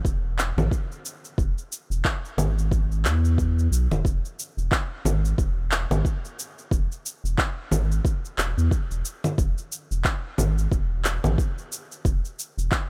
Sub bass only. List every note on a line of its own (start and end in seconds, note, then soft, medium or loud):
0.05 0.52 E1 medium
0.57 0.69 A1 medium
1.38 1.54 E1 loud
1.90 2.02 E1 medium
2.37 3.06 G#1 medium
3.05 3.68 E2 medium
3.71 3.87 B1 medium
3.91 4.02 E1 loud
4.05 4.21 E1 loud
4.57 4.69 E1 medium
5.05 5.33 G#1 medium
5.38 5.86 E1 medium
5.91 6.02 G#1 loud
6.72 6.88 E1 loud
7.24 7.36 E1 medium
7.71 8.00 G#1 medium
8.38 8.54 E1 medium
8.57 8.69 E2 medium
8.91 9.03 E1 medium
9.38 9.54 E1 loud
9.91 10.03 E1 medium
10.38 10.67 G#1 medium
10.71 11.19 E1 medium
11.24 11.36 A1 medium
12.05 12.21 E1 loud
12.58 12.69 E1 medium